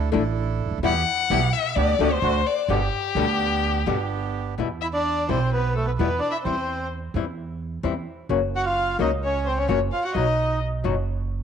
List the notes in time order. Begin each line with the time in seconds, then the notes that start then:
Already playing: A4
0.12 A1 D3 A3 D4 E4 A4
0.66 C#2
0.71 D2
0.78 D#2
0.83 E2 B2 E3 G3 B3 E4 G4 F#5
1.30 B1 B2 E3 G3 B3 E4 G4
1.53 E5
1.76 D2 B3 D4 G4 D5
1.99 D2 D3 A3 B3 D4 F#4 G4
2.12 C5
2.22 D2 A3 D4 F#4
2.47 D5
2.68 G1 B2 D3 G3 B3 D4 G4
3.15 D2 B2 D3 G3 B3 D4 G4
3.86 G1 B2 D3 G3 B3 D4 G4
4.58 E2 B2 E3 G3 B3 E4
4.81 E4 E5
4.93 D4 D5
5.28 B1 B2 E3 G3 B3 C4 E4 C5
5.53 B3 B4
5.75 A3 A4
5.85 B3 B4
5.98 E2 B2 E3 G3 B3 E4 B4
6.19 D4 D5
6.31 E4 E5
6.42 E2 E3 G3 C4 C5
6.46 C4 E4
7.14 E2 E3 G3 C4 E4
7.83 E2 E3 G3 C4 E4
8.29 F#1 C#3 F#3 A#3 C#4 F#4
8.56 F#4 F#5
8.66 F4 F5
8.99 C#2 C#3 F#3 A#3 C#4 D#4 F#4 D#5
9.24 C#4 C#5
9.46 C4 C5
9.57 C#4 C#5
9.68 F#1 C#3 F#3 A#3 C#4 F#4 C#5
9.92 F4 F5
10.04 F#4 F#5
10.14 B1 B2 F#3 B3 D#4 F#4 D#5
10.84 F#1 B2 F#3 B3 D#4 F#4